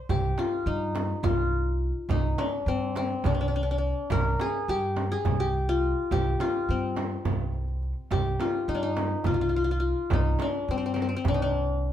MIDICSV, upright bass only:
0, 0, Header, 1, 2, 480
1, 0, Start_track
1, 0, Tempo, 571973
1, 78, Time_signature, 7, 3, 24, 8
1, 10010, End_track
2, 0, Start_track
2, 0, Title_t, "Upright bass"
2, 0, Program_c, 0, 32
2, 77, Note_on_c, 0, 36, 80
2, 264, Note_off_c, 0, 36, 0
2, 554, Note_on_c, 0, 43, 79
2, 929, Note_off_c, 0, 43, 0
2, 1032, Note_on_c, 0, 36, 75
2, 1595, Note_off_c, 0, 36, 0
2, 1751, Note_on_c, 0, 36, 80
2, 1942, Note_off_c, 0, 36, 0
2, 2234, Note_on_c, 0, 43, 75
2, 2611, Note_off_c, 0, 43, 0
2, 2721, Note_on_c, 0, 36, 77
2, 3282, Note_off_c, 0, 36, 0
2, 3443, Note_on_c, 0, 36, 88
2, 3631, Note_off_c, 0, 36, 0
2, 3930, Note_on_c, 0, 43, 77
2, 4301, Note_off_c, 0, 43, 0
2, 4410, Note_on_c, 0, 36, 74
2, 4967, Note_off_c, 0, 36, 0
2, 5128, Note_on_c, 0, 36, 78
2, 5314, Note_off_c, 0, 36, 0
2, 5611, Note_on_c, 0, 43, 72
2, 5981, Note_off_c, 0, 43, 0
2, 6087, Note_on_c, 0, 36, 67
2, 6644, Note_off_c, 0, 36, 0
2, 6807, Note_on_c, 0, 36, 80
2, 6992, Note_off_c, 0, 36, 0
2, 7284, Note_on_c, 0, 43, 76
2, 7655, Note_off_c, 0, 43, 0
2, 7763, Note_on_c, 0, 36, 76
2, 8319, Note_off_c, 0, 36, 0
2, 8484, Note_on_c, 0, 36, 84
2, 8668, Note_off_c, 0, 36, 0
2, 8966, Note_on_c, 0, 43, 78
2, 9334, Note_off_c, 0, 43, 0
2, 9446, Note_on_c, 0, 36, 75
2, 9998, Note_off_c, 0, 36, 0
2, 10010, End_track
0, 0, End_of_file